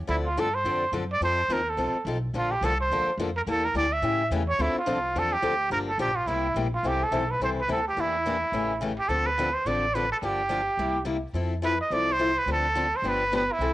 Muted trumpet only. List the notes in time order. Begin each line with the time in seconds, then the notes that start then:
0.09 E4
0.26 F4
0.40 A4
0.55 C5
1.13 D5
1.24 C5
1.53 A#4
1.70 A4
2.37 F4
2.51 G4
2.64 A4
2.81 C5
3.37 A#4
3.51 A4
3.65 A#4
3.77 D5
3.93 E5
4.49 C#5
4.62 E4
4.79 F4
5.19 A4
5.33 G4
5.72 A#4
5.89 A4
6.00 G4
6.16 F4
6.27 E4
6.75 F4
6.87 G4
7.04 A4
7.31 B4
7.44 C5
7.61 B4
7.72 A4
7.88 G4
8.01 E4
8.99 G4
9.09 A4
9.26 B4
9.54 C5
9.67 D5
9.95 B4
10.12 A4
10.24 G4
11.65 B4
11.81 D#5
11.93 D5
12.12 C5
12.38 B4
12.52 A4
12.96 C5
13.09 B4
13.36 B4
13.53 E4